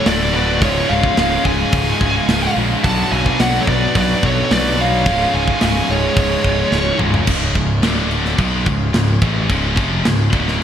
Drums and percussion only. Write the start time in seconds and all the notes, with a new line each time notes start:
0.06 snare, open hi-hat
0.62 kick, open hi-hat
1.03 kick
1.17 snare, open hi-hat
1.45 kick
1.72 kick, open hi-hat
2.01 kick
2.29 snare, open hi-hat
2.84 kick, open hi-hat
3.26 kick
3.40 snare, open hi-hat
3.67 kick
3.95 kick, open hi-hat
4.23 kick
4.51 snare, open hi-hat
5.06 kick, open hi-hat
5.48 kick
5.61 snare, open hi-hat
6.17 kick, open hi-hat
6.44 kick
6.72 snare
6.99 mid tom
7.14 floor tom
7.27 kick, crash
7.55 kick, crash
7.83 snare, crash
8.11 crash
8.25 snare
8.38 kick, crash
8.66 kick, crash
8.94 snare, crash
9.22 kick, crash
9.50 kick, crash
9.77 kick, crash
10.05 snare, crash
10.33 kick, crash
10.48 snare